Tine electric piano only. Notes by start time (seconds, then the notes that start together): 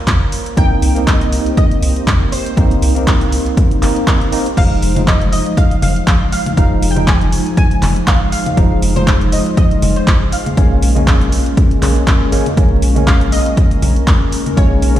0.57 A#3 C4 D#4
0.95 A#3 C4 D#4
2.57 A#3 C4 D#4
2.95 A#3 C4 D#4
3.82 A#3 C4 D#4
4.32 A#3 C4 D#4
4.57 F3 G#3 D#4
4.95 F3 G#3 D#4
6.57 F3 G#3 D#4
6.95 F3 G#3 D#4
8.57 F3 G#3 D#4
8.95 F3 G#3 D#4
10.57 G#3 A#3 C#4
10.95 G#3 A#3 C#4
11.82 G#3 A#3 C#4
12.32 G#3 A#3 C#4
12.57 G#3 A#3 C#4
12.95 G#3 A#3 C#4
14.57 G#3 A#3 C#4
14.95 G#3 A#3